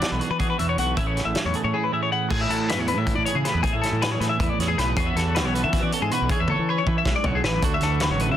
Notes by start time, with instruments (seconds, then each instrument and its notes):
Already playing: clean electric guitar E3 F#4 D5
0.01 clean electric guitar B3 D4, snare, closed hi-hat
0.11 fingered electric bass B1, clean electric guitar B4
0.20 clean electric guitar F#4 G#4, closed hi-hat
0.30 fingered electric bass E3, clean electric guitar B4
0.39 clean electric guitar F#4 G#4, kick, closed hi-hat
0.50 clean electric guitar B4
0.59 fingered electric bass E2, clean electric guitar B2 F#4 E5, closed hi-hat
0.69 clean electric guitar C#5
0.78 fingered electric bass B1, clean electric guitar F#4 F#5, closed hi-hat
0.97 clean electric guitar A2 E3 C#4 E4 G#4 E5, kick, closed hi-hat
1.07 clean electric guitar C#5
1.17 clean electric guitar E4, snare, closed hi-hat
1.25 fingered electric bass A1, clean electric guitar E5
1.35 clean electric guitar E3 C#4, snare, closed hi-hat
1.45 fingered electric bass E2, clean electric guitar C#5
1.54 clean electric guitar G#4 A4, closed hi-hat
1.64 fingered electric bass A2, clean electric guitar C#5
1.74 clean electric guitar E4 G#4
1.84 clean electric guitar B4
1.92 clean electric guitar A2 G#4 E5
2.03 clean electric guitar C#5
2.12 clean electric guitar E4 F#5
2.30 clean electric guitar A2 G#4, fingered electric bass A2, kick, crash
2.41 clean electric guitar E5
2.49 fingered electric bass A2, clean electric guitar E4 A4, closed hi-hat
2.69 clean electric guitar G#4 B4, snare, closed hi-hat
2.78 fingered electric bass E2, clean electric guitar C#5
2.87 clean electric guitar E3 B4, closed hi-hat
2.98 fingered electric bass A2, clean electric guitar E5
3.07 clean electric guitar E4, kick, closed hi-hat
3.15 fingered electric bass A2, clean electric guitar D5
3.25 clean electric guitar G#4 C#5, closed hi-hat
3.35 fingered electric bass C#3, clean electric guitar G#4
3.45 clean electric guitar A2 E4 B4, snare, closed hi-hat
3.54 fingered electric bass E2
3.63 clean electric guitar A2 G#4, kick, closed hi-hat
3.73 fingered electric bass A2, clean electric guitar E5
3.82 clean electric guitar E4 A4, snare, closed hi-hat
3.92 fingered electric bass A2
4.02 clean electric guitar G#4 B4, snare, closed hi-hat
4.12 clean electric guitar C#5
4.20 fingered electric bass A2, clean electric guitar E3 B4, snare, closed hi-hat
4.29 clean electric guitar E5
4.39 fingered electric bass E2, clean electric guitar E4, kick, closed hi-hat
4.49 clean electric guitar D5
4.59 fingered electric bass E2, clean electric guitar G#4 C#5, snare, closed hi-hat
4.68 clean electric guitar G#4
4.77 fingered electric bass B1, clean electric guitar A2 E4 B4, snare, closed hi-hat
4.97 fingered electric bass E2, clean electric guitar E3 B3 C#4 F#4 G#4, kick, closed hi-hat
5.07 clean electric guitar E5
5.15 fingered electric bass E2, clean electric guitar F#4 A4, snare, closed hi-hat
5.35 clean electric guitar F#4 B4, snare, closed hi-hat
5.44 fingered electric bass B1, clean electric guitar C#5
5.54 clean electric guitar B3 B4, closed hi-hat
5.64 fingered electric bass E3, clean electric guitar E5
5.73 clean electric guitar F#4, kick, snare, closed hi-hat
5.82 fingered electric bass E3, clean electric guitar D5
5.92 clean electric guitar A4 C#5, closed hi-hat
6.01 fingered electric bass G#2, clean electric guitar G#4
6.11 clean electric guitar B2 F#4 B4, closed hi-hat
6.21 fingered electric bass B1
6.29 clean electric guitar E3 G#4 C#5, kick, closed hi-hat
6.40 fingered electric bass E2, clean electric guitar E5
6.48 clean electric guitar A4 C#5, high tom
6.59 fingered electric bass E3
6.69 clean electric guitar B4 C#5
6.78 clean electric guitar C#5
6.87 fingered electric bass E3, clean electric guitar E4 B4, kick
6.98 clean electric guitar E5
7.05 fingered electric bass B1, clean electric guitar G#3, kick, snare
7.16 clean electric guitar D5
7.24 fingered electric bass B1, clean electric guitar F#3 C#5, floor tom
7.35 clean electric guitar G#4
7.44 fingered electric bass A1, clean electric guitar E3 B4, snare
7.62 fingered electric bass D2, clean electric guitar D3 F#4 A4, kick, closed hi-hat
7.74 clean electric guitar E5
7.81 fingered electric bass D2, clean electric guitar E4 A4, snare, closed hi-hat
8.00 clean electric guitar F#4 B4, snare, closed hi-hat
8.10 fingered electric bass A1, clean electric guitar C#5
8.19 clean electric guitar F#3 B4, closed hi-hat
8.29 fingered electric bass D3, clean electric guitar E5